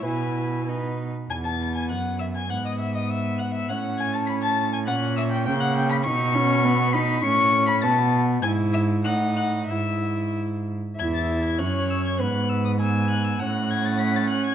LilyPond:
<<
  \new Staff \with { instrumentName = "Violin" } { \time 2/4 \key e \major \tempo 4 = 100 gis''4 r4 | gis'''16 a'''8 gis'''16 fis'''8 e'''16 gis'''16 | fis'''16 dis'''16 e'''16 dis'''16 e'''8 fis'''16 e'''16 | fis'''8 gis'''16 a'''16 b'''16 a'''8 gis'''16 |
fis'''8 e'''16 g'''16 g'''16 fis'''16 g'''16 b'''16 | cis''''4. b'''8 | cis''''8. b'''16 a'''8 r8 | gis'''8 e'''8 fis'''8 fis'''8 |
e'''4 r4 | gis'''16 a'''8 gis'''16 fis'''8 e'''16 gis'''16 | fis'''8 e'''16 dis'''16 e'''8 fis'''16 e'''16 | fis'''8 gis'''16 a'''16 b'''16 a'''16 fis'''16 gis'''16 | }
  \new Staff \with { instrumentName = "Violin" } { \time 2/4 \key e \major b'4 b'8 r8 | gis''16 a''8 gis''16 fis''8 e''16 gis''16 | fis''16 dis''16 e''16 dis''16 e''8 fis''16 e''16 | fis''8 gis''16 a''16 b''16 a''8 gis''16 |
fis''8 e''16 g''16 g''16 fis''16 g''16 b''16 | cis'''4. b''8 | cis'''8. b''16 a''8 r8 | gis''8 e''8 fis''8 fis''8 |
e''4 r4 | e''4 cis''4 | b'4 gis''4 | fis''2 | }
  \new Staff \with { instrumentName = "Viola" } { \time 2/4 \key e \major e'4 dis'8 r8 | b2 | b2 | cis'2 |
cis'4 ais4 | dis'8 cis'8 b8 dis'8 | cis'4 b4 | e'4 dis'4 |
e'4. r8 | e'4 cis'4 | b4 b4 | cis'2 | }
  \new Staff \with { instrumentName = "Cello" } { \clef bass \time 2/4 \key e \major b,4. r8 | e,4 fis,4 | gis,2 | a,2 |
ais,4 cis4 | b,2 | a,4 b,4 | gis,4 a,4 |
gis,4. r8 | e,4 fis,4 | gis,2 | a,2 | }
>>